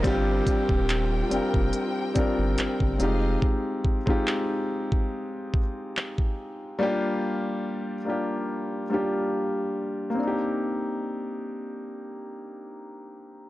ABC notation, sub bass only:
X:1
M:4/4
L:1/16
Q:"Swing 16ths" 1/4=71
K:Cm
V:1 name="Sub bass" clef=bass
G,,,2 z E,,,3 F,,, F,,, z2 G,,, G,,, G,,, G,,, F,,,2 | z16 | z16 | z16 |]